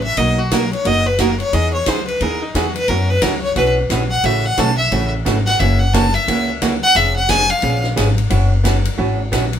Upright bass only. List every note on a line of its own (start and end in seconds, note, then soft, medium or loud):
0.00 0.12 A1 medium
0.18 0.72 B1 medium
0.85 1.39 F#1 medium
1.53 1.80 E2 medium
1.87 2.15 C#2 medium
2.20 2.49 D#2 medium
2.54 2.83 E2 medium
2.88 3.15 F#2 medium
3.22 3.51 C#2 medium
3.56 3.85 B1 medium
3.89 4.19 A#1 medium
4.24 4.51 A1 medium
4.58 4.87 B1 medium
4.92 5.21 A1 medium
5.26 5.55 G#1 medium
5.60 6.14 F#1 medium
6.28 6.82 C#2 medium
6.95 7.50 F1 medium
7.63 7.92 A#1 medium
7.97 8.26 G#1 medium
8.31 8.85 F#1 loud
8.99 9.28 G#1 medium
9.32 9.59 A#1 medium